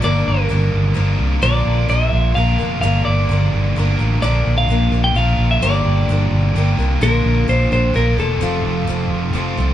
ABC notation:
X:1
M:3/4
L:1/16
Q:1/4=129
K:Gm
V:1 name="Clean electric guitar"
d2 B8 z2 | d4 =e4 f4 | f2 d8 z2 | d3 f4 g f3 =e |
d8- d2 z2 | B4 c2 c2 B2 A2- | A8- A2 z2 |]
V:2 name="Steel-string acoustic guitar"
[G,,D,F,B,DB]4 [F,B,DB]4 [F,B,DB]4 | [B,,D,F,B,DB]4 [F,B,DB]4 [F,B,DB]2 [F,B,DB]2 | [G,,D,F,B,DB]4 [F,B,DB]4 [F,B,DB]2 [F,B,DB]2 | [B,,D,F,B,DB]4 [F,B,DB]2 [F,B,DB]2 [F,B,DB]4 |
[G,,D,F,B,DB]4 [F,B,DB]4 [F,B,DB]2 [F,B,DB]2 | [B,,D,F,B,DB]4 [F,B,DB]2 [F,B,DB]2 [F,B,DB]2 [F,B,DB]2 | [F,CFA]4 [F,CFA]4 [F,CFA]2 [CFA]2 |]
V:3 name="Overdriven electric guitar"
[G,,D,G,B,DB]8 [G,,D,G,B,DB]4 | [B,,D,F,B,DB]8 [B,,D,F,B,DB]4 | [G,,D,G,B,DB]8 [G,,D,G,B,DB]4 | [B,,D,F,B,DB]8 [B,,D,F,B,DB]4 |
[G,,D,G,B,DG]8 [G,,D,G,B,DG]4 | [B,,D,B,DF]8 [B,,D,B,DF]4 | [F,,C,F,A,CF]8 [F,,C,F,A,CF]4 |]
V:4 name="Fingered electric bass" clef=bass
G,,,2 G,,,2 G,,,2 G,,,2 G,,,2 C,,2 | B,,,2 B,,,2 B,,,2 B,,,2 B,,,2 z2 | G,,,2 G,,,2 G,,,2 G,,,2 G,,,2 A,,,2 | B,,,2 B,,,2 B,,,2 B,,,2 B,,,2 B,,,2 |
G,,,2 G,,,2 G,,,2 G,,,2 G,,,2 C,,2 | B,,,2 B,,,2 B,,,2 B,,,2 B,,,2 =E,,,2 | F,,,2 F,,,2 F,,,2 F,,,2 F,,,2 C,,2 |]